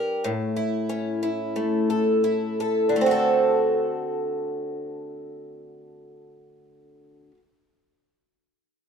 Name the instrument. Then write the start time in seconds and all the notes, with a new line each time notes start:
twelve-string acoustic guitar
Already playing: G3 D4 G4 A#4
0.24 A2
0.56 E4
0.89 C#4
1.23 E4
1.56 A3
1.90 A4
2.24 E4
2.60 A4
2.89 D3
2.96 A3
3.01 C4
3.06 F#4
3.11 A4